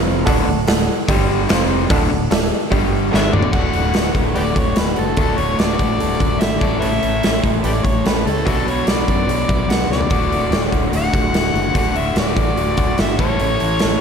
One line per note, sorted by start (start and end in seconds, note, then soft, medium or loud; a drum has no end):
0.00 0.25 F1 medium
0.00 0.26 F2 medium
0.00 0.27 C3 loud
0.00 0.27 F3 loud
0.00 0.18 F4 medium
0.00 0.19 C5 medium
0.00 0.19 F5 loud
0.25 0.46 D1 medium
0.25 0.47 D2 loud
0.25 0.47 A2 loud
0.25 0.47 D3 loud
0.25 0.59 A4 loud
0.25 0.59 D5 loud
0.25 0.59 F#5 loud
0.25 kick loud
0.25 open hi-hat medium
0.25 cowbell medium
0.48 0.67 D1 medium
0.48 0.64 D2 medium
0.48 0.65 A2 medium
0.67 0.87 D1 medium
0.67 0.84 D2 medium
0.67 0.85 A2 medium
0.67 1.01 A4 loud
0.67 1.01 D5 medium
0.67 1.01 F#5 loud
0.67 snare loud
0.67 open hi-hat medium
0.67 cowbell medium
1.08 1.47 G1 medium
1.08 1.50 G2 medium
1.08 1.50 D3 loud
1.08 1.50 G3 loud
1.08 1.42 G4 medium
1.08 1.42 D5 medium
1.08 1.42 G5 medium
1.08 kick loud
1.08 open hi-hat medium
1.08 cowbell medium
1.49 1.88 F1 medium
1.49 1.89 F2 medium
1.49 1.90 C3 loud
1.49 1.89 F3 loud
1.49 1.83 F4 medium
1.49 1.83 C5 medium
1.49 1.83 F5 medium
1.49 snare loud
1.49 open hi-hat medium
1.49 cowbell medium
1.90 2.09 D1 loud
1.90 2.09 D2 loud
1.90 2.09 A2 loud
1.90 2.10 D3 loud
1.90 2.23 A4 loud
1.90 2.23 D5 loud
1.90 2.23 F#5 loud
1.90 kick loud
1.90 open hi-hat medium
1.90 cowbell medium
2.10 2.30 D1 medium
2.10 2.27 D2 medium
2.10 2.27 A2 medium
2.30 2.50 D1 medium
2.30 2.47 D2 medium
2.30 2.48 A2 medium
2.30 2.64 A4 medium
2.30 2.65 D5 medium
2.30 2.65 E5 loud
2.30 snare loud
2.30 open hi-hat medium
2.30 cowbell medium
2.71 3.10 G1 medium
2.71 3.10 G2 medium
2.71 3.11 D3 medium
2.71 3.11 G3 loud
2.71 3.05 G4 medium
2.71 3.05 D5 medium
2.71 3.05 G5 medium
2.71 kick medium
2.71 open hi-hat soft
2.71 cowbell medium
3.11 3.32 G#1 medium
3.11 3.32 G#2 medium
3.11 3.32 D#3 loud
3.11 3.32 G#3 medium
3.11 3.46 A4 medium
3.11 3.45 D5 medium
3.11 3.46 F#5 medium
3.11 snare medium
3.11 cowbell medium
3.15 3.24 B4 medium
3.15 3.23 C#5 medium
3.15 3.35 E5 medium
3.32 3.52 D1 medium
3.32 3.51 D2 medium
3.32 3.52 A2 medium
3.32 3.53 D3 loud
3.32 3.51 D5 loud
3.32 mid tom medium
3.43 floor tom medium
3.52 3.71 D1 medium
3.52 4.15 D2 medium
3.52 3.92 A2 medium
3.52 3.75 D3 medium
3.52 3.73 A3 medium
3.52 3.71 F#4 medium
3.52 3.87 A4 medium
3.52 3.87 D5 medium
3.52 4.11 F#5 loud
3.52 3.87 F#5 medium
3.52 kick medium
3.52 crash medium
3.72 3.92 D1 medium
3.72 3.93 D3 soft
3.72 3.94 A3 medium
3.72 3.95 F#4 medium
3.72 open hi-hat soft
3.93 4.13 D1 medium
3.93 4.14 A2 medium
3.93 4.13 D3 medium
3.93 4.13 A3 medium
3.93 4.12 F#4 medium
3.93 4.28 A4 medium
3.93 snare loud
3.93 open hi-hat medium
3.97 4.29 D5 medium
3.97 4.29 F#5 medium
4.13 4.32 D1 medium
4.13 4.55 D2 medium
4.13 4.34 A2 medium
4.13 4.35 D3 medium
4.13 4.36 A3 medium
4.13 4.36 F#4 medium
4.13 kick medium
4.13 open hi-hat soft
4.35 4.54 D1 medium
4.35 4.55 A2 medium
4.35 4.54 D3 medium
4.35 4.55 A3 medium
4.35 4.53 F#4 medium
4.35 4.43 G4 medium
4.35 4.52 A4 medium
4.35 4.43 B4 medium
4.35 4.60 D5 medium
4.35 4.53 D5 medium
4.35 4.53 F#5 medium
4.35 open hi-hat medium
4.54 4.74 D1 medium
4.54 4.98 D2 medium
4.54 4.73 A2 medium
4.54 4.74 D3 medium
4.54 4.76 A3 medium
4.54 4.76 F#4 medium
4.54 4.74 A4 medium
4.54 4.74 D5 medium
4.54 kick medium
4.54 open hi-hat soft
4.58 4.79 C#5 medium
4.58 4.74 F#5 medium
4.75 4.95 D1 medium
4.75 5.15 A2 medium
4.75 4.95 D3 medium
4.75 4.95 A3 medium
4.75 4.93 F#4 medium
4.75 5.10 A4 medium
4.75 5.01 B4 medium
4.75 5.10 D5 medium
4.75 snare loud
4.75 open hi-hat medium
4.79 5.11 F#5 medium
4.94 5.16 D3 medium
4.94 5.18 A3 medium
4.94 5.17 F#4 medium
4.94 open hi-hat soft
4.99 5.16 F#1 medium
4.99 5.19 A4 medium
5.16 5.35 D1 medium
5.16 5.58 D2 medium
5.16 5.55 A2 medium
5.16 5.38 D3 medium
5.16 5.38 A3 medium
5.16 5.35 F#4 medium
5.16 5.51 A4 medium
5.16 5.39 A4 medium
5.16 5.51 D5 medium
5.16 5.51 A5 medium
5.16 kick medium
5.16 open hi-hat medium
5.37 5.56 D1 medium
5.37 5.57 D3 medium
5.37 5.58 A3 medium
5.37 5.59 F#4 medium
5.37 5.61 C#5 medium
5.37 open hi-hat soft
5.57 5.77 D1 medium
5.57 5.80 A2 medium
5.57 5.79 D3 medium
5.57 5.79 A3 medium
5.57 5.78 F#4 medium
5.57 5.91 A4 medium
5.57 5.92 D5 medium
5.57 6.42 D5 medium
5.57 5.92 A5 medium
5.57 snare loud
5.57 open hi-hat medium
5.79 5.97 A1 medium
5.79 6.21 D2 medium
5.79 5.98 A2 medium
5.79 5.99 D3 medium
5.79 6.00 A3 medium
5.79 6.00 F#4 medium
5.79 kick medium
5.79 open hi-hat soft
5.99 6.19 D1 medium
5.99 6.21 A2 medium
5.99 6.19 D3 medium
5.99 6.19 A3 medium
5.99 6.18 F#4 medium
5.99 6.17 A4 medium
5.99 6.17 D5 medium
5.99 6.17 A5 medium
5.99 open hi-hat soft
6.19 6.38 D1 medium
6.19 6.62 D2 medium
6.19 6.39 A2 medium
6.19 6.40 D3 medium
6.19 6.41 A3 medium
6.19 6.42 F#4 medium
6.19 6.37 A4 medium
6.19 6.37 D5 medium
6.19 6.37 F#5 medium
6.19 kick medium
6.19 open hi-hat soft
6.40 6.60 G#1 medium
6.40 6.60 A2 medium
6.40 6.61 D3 medium
6.40 6.61 A3 medium
6.40 6.60 F#4 medium
6.40 6.61 A4 medium
6.40 6.62 D5 medium
6.40 6.62 E5 medium
6.40 6.62 F#5 medium
6.40 snare loud
6.40 open hi-hat medium
6.61 6.79 A1 medium
6.61 6.80 A2 medium
6.61 6.81 E3 medium
6.61 6.81 A3 medium
6.61 6.81 C#4 medium
6.61 6.82 E4 medium
6.61 6.83 A4 medium
6.61 7.12 A4 medium
6.61 7.11 C#5 medium
6.61 6.80 D5 medium
6.61 7.12 E5 medium
6.61 kick loud
6.61 open hi-hat soft
6.80 7.01 A1 medium
6.80 7.23 A2 medium
6.80 7.24 E3 medium
6.80 7.02 A3 medium
6.80 7.02 C#4 medium
6.80 7.01 E4 medium
6.80 7.00 A4 loud
6.80 6.88 B4 medium
6.80 6.89 C#5 medium
6.80 7.39 E5 loud
6.80 open hi-hat medium
7.01 7.20 A1 medium
7.01 7.20 A3 soft
7.01 7.22 C#4 medium
7.01 7.22 E4 medium
7.01 7.22 A4 medium
7.01 open hi-hat soft
7.21 7.42 A1 medium
7.21 7.42 A3 medium
7.21 7.42 C#4 medium
7.21 7.42 E4 medium
7.21 7.41 A4 medium
7.21 7.57 A4 medium
7.21 snare loud
7.21 open hi-hat medium
7.26 7.58 C#5 medium
7.26 7.58 E5 medium
7.43 7.61 A1 medium
7.43 7.86 A2 medium
7.43 7.86 E3 medium
7.43 7.62 A3 medium
7.43 7.64 C#4 medium
7.43 7.65 E4 medium
7.43 7.64 A4 medium
7.43 kick medium
7.43 open hi-hat soft
7.63 7.82 A1 medium
7.63 7.86 A3 medium
7.63 7.86 C#4 medium
7.63 7.85 E4 medium
7.63 7.72 G4 medium
7.63 7.81 A4 medium
7.63 7.85 A4 medium
7.63 7.71 B4 medium
7.63 7.81 C#5 medium
7.63 7.86 D5 medium
7.63 7.81 E5 medium
7.63 open hi-hat medium
7.84 8.02 A1 medium
7.84 8.28 E3 medium
7.84 8.06 A3 medium
7.84 8.07 C#4 medium
7.84 8.07 E4 medium
7.84 8.08 A4 medium
7.84 8.02 A4 medium
7.84 8.06 C#5 medium
7.84 8.03 C#5 medium
7.84 8.03 E5 medium
7.84 kick medium
7.84 open hi-hat soft
7.89 8.28 A2 medium
8.05 8.23 A1 medium
8.05 8.29 A3 medium
8.05 8.28 C#4 medium
8.05 8.27 E4 medium
8.05 8.38 A4 medium
8.05 8.26 A4 medium
8.05 8.27 B4 medium
8.05 8.39 C#5 soft
8.05 8.39 G5 medium
8.05 snare loud
8.05 open hi-hat medium
8.25 8.43 C#2 medium
8.25 8.47 C#4 medium
8.25 8.47 E4 medium
8.25 8.46 A4 medium
8.25 open hi-hat soft
8.31 8.48 A3 medium
8.45 8.65 B1 medium
8.45 8.88 B2 medium
8.45 9.11 F#3 medium
8.45 8.56 E4 medium
8.45 8.79 F#4 medium
8.45 8.54 F#4 medium
8.45 8.71 A4 medium
8.45 8.79 B4 medium
8.45 8.80 D5 medium
8.45 kick medium
8.45 open hi-hat medium
8.49 8.70 B3 loud
8.49 8.70 D4 medium
8.49 8.69 F#4 medium
8.49 8.67 B4 medium
8.66 8.84 B1 medium
8.66 8.91 F#4 medium
8.66 8.90 B4 medium
8.66 8.89 C#5 medium
8.66 open hi-hat soft
8.70 8.87 B3 medium
8.70 8.89 D4 medium
8.86 9.04 B1 medium
8.86 9.10 B3 medium
8.86 9.10 D4 medium
8.86 9.21 F#4 medium
8.86 9.21 B4 medium
8.86 9.72 D5 medium
8.86 9.21 D5 medium
8.86 snare medium
8.86 open hi-hat medium
8.91 9.10 F#4 medium
8.91 9.08 B4 medium
9.08 9.26 F#2 medium
9.08 9.49 B2 medium
9.08 9.50 F#3 medium
9.08 9.27 B3 medium
9.08 9.29 D4 medium
9.08 9.29 F#4 medium
9.08 9.30 B4 medium
9.08 kick medium
9.08 open hi-hat soft
9.27 9.45 B1 medium
9.27 9.48 B3 medium
9.27 9.49 D4 medium
9.27 9.46 F#4 medium
9.27 9.48 F#4 medium
9.27 9.45 B4 medium
9.27 9.46 C#5 medium
9.27 open hi-hat medium
9.31 9.47 B4 medium
9.48 9.67 B1 medium
9.48 9.91 B2 medium
9.48 10.10 F#3 medium
9.48 9.67 B3 medium
9.48 9.69 D4 medium
9.48 9.70 F#4 medium
9.48 9.66 F#4 medium
9.48 9.69 B4 medium
9.48 9.66 B4 medium
9.48 9.66 E5 medium
9.48 kick medium
9.48 open hi-hat soft
9.68 9.86 B1 medium
9.68 9.89 B3 medium
9.68 9.90 D4 medium
9.68 10.02 F#4 medium
9.68 9.90 F#4 medium
9.68 10.02 B4 medium
9.68 9.87 B4 medium
9.68 10.03 D5 medium
9.68 9.91 F#5 medium
9.68 snare loud
9.68 open hi-hat medium
9.88 10.07 C#2 medium
9.88 10.10 B3 medium
9.88 10.11 D4 medium
9.88 10.12 F#4 medium
9.88 10.09 B4 medium
9.88 10.69 D5 medium
9.88 snare soft
10.01 floor tom medium
10.09 10.28 D1 medium
10.09 10.74 D2 medium
10.09 10.49 A2 medium
10.09 10.32 D3 medium
10.09 10.31 A3 medium
10.09 10.44 F#4 medium
10.09 10.30 F#4 medium
10.09 10.44 A4 medium
10.09 10.45 D5 medium
10.09 kick loud
10.09 open hi-hat medium
10.31 10.49 D1 medium
10.31 10.51 D3 soft
10.31 10.52 A3 medium
10.31 10.52 F#4 medium
10.31 open hi-hat soft
10.50 10.69 D1 medium
10.50 10.73 A2 medium
10.50 10.72 D3 medium
10.50 10.73 A3 medium
10.50 10.85 F#4 medium
10.50 10.71 F#4 medium
10.50 10.86 A4 medium
10.50 10.86 C#5 loud
10.50 snare loud
10.50 open hi-hat medium
10.72 10.90 D1 medium
10.72 11.15 D2 medium
10.72 10.92 A2 medium
10.72 10.93 D3 medium
10.72 10.94 A3 medium
10.72 10.94 F#4 medium
10.72 kick medium
10.72 open hi-hat soft
10.92 11.10 D1 medium
10.92 11.14 A2 medium
10.92 11.14 D3 medium
10.92 11.14 A3 medium
10.92 11.10 F#4 medium
10.92 11.12 F#4 medium
10.92 11.10 A4 medium
10.92 11.10 D5 medium
10.92 open hi-hat medium
10.97 11.73 F#5 medium
11.13 11.31 D1 medium
11.13 11.56 D2 medium
11.13 11.32 A2 medium
11.13 11.33 D3 medium
11.13 11.34 A3 medium
11.13 11.34 F#4 medium
11.13 11.30 F#4 medium
11.13 11.30 A4 medium
11.13 11.31 D5 medium
11.13 kick medium
11.13 open hi-hat soft
11.33 11.51 D1 medium
11.33 11.73 A2 medium
11.33 11.55 D3 medium
11.33 11.54 A3 medium
11.33 11.68 F#4 medium
11.33 11.52 F#4 medium
11.33 11.67 A4 medium
11.33 11.68 E5 medium
11.33 snare loud
11.33 open hi-hat medium
11.53 11.71 F#1 medium
11.53 11.74 D3 medium
11.53 11.75 A3 medium
11.53 11.75 F#4 medium
11.53 open hi-hat soft
11.73 11.92 D1 medium
11.73 12.15 D2 medium
11.73 12.15 A2 medium
11.73 11.95 D3 medium
11.73 11.95 A3 medium
11.73 11.92 F#4 medium
11.73 kick loud
11.73 open hi-hat medium
11.77 12.09 F#4 medium
11.77 12.09 A4 medium
11.77 12.09 D5 medium
11.77 11.98 F#5 loud
11.93 12.12 D1 medium
11.93 12.15 D3 soft
11.93 12.17 A3 medium
11.93 12.17 F#4 medium
11.93 12.17 E5 medium
11.93 open hi-hat soft
12.15 12.33 D1 medium
12.15 12.37 A2 medium
12.15 12.37 D3 medium
12.15 12.37 A3 medium
12.15 12.50 F#4 medium
12.15 12.35 F#4 medium
12.15 12.50 A4 medium
12.15 12.50 D5 medium
12.15 12.96 D5 medium
12.15 snare medium
12.15 open hi-hat medium
12.36 12.54 A1 medium
12.36 12.79 D2 medium
12.36 12.56 A2 medium
12.36 12.56 D3 medium
12.36 12.57 A3 medium
12.36 12.58 F#4 medium
12.36 kick medium
12.36 open hi-hat soft
12.57 12.75 D1 medium
12.57 12.78 A2 medium
12.57 12.77 D3 medium
12.57 12.76 A3 medium
12.57 12.74 F#4 medium
12.57 12.76 F#4 medium
12.57 12.74 A4 medium
12.57 12.74 D5 medium
12.57 open hi-hat medium
12.77 12.95 D1 medium
12.77 13.19 D2 medium
12.77 12.97 A2 medium
12.77 12.99 D3 medium
12.77 12.99 A3 medium
12.77 13.00 F#4 medium
12.77 12.95 F#4 medium
12.77 12.95 A4 medium
12.77 12.95 D5 medium
12.77 kick medium
12.77 open hi-hat soft
12.98 13.16 G1 medium
12.98 13.18 A2 medium
12.98 13.19 D3 medium
12.98 13.19 A3 medium
12.98 13.20 F#4 medium
12.98 13.19 F#4 medium
12.98 13.17 A4 medium
12.98 13.20 D5 medium
12.98 13.19 E5 medium
12.98 snare loud
12.98 open hi-hat medium
13.17 13.37 A1 medium
13.17 14.01 A2 medium
13.17 13.39 A3 medium
13.17 13.40 C#4 medium
13.17 13.68 E4 medium
13.17 13.40 E4 medium
13.17 13.68 A4 medium
13.17 13.40 A4 medium
13.17 13.68 C#5 medium
13.17 14.01 C#5 medium
13.17 kick loud
13.17 open hi-hat soft
13.22 13.38 A2 medium
13.22 13.39 E3 medium
13.39 13.58 A1 medium
13.39 13.81 A2 medium
13.39 13.81 E3 medium
13.39 13.62 A3 medium
13.39 13.61 C#4 medium
13.39 13.61 E4 medium
13.39 13.59 A4 loud
13.39 open hi-hat medium
13.60 13.79 A1 medium
13.60 13.80 A3 medium
13.60 13.80 C#4 medium
13.60 13.81 E4 medium
13.60 13.82 A4 medium
13.60 open hi-hat soft
13.79 14.00 A1 medium
13.79 14.00 A3 medium
13.79 14.00 C#4 medium
13.79 14.01 E4 medium
13.79 13.99 E4 medium
13.79 14.01 A4 medium
13.79 13.99 A4 medium
13.79 14.01 C#5 medium
13.79 snare loud
13.79 open hi-hat medium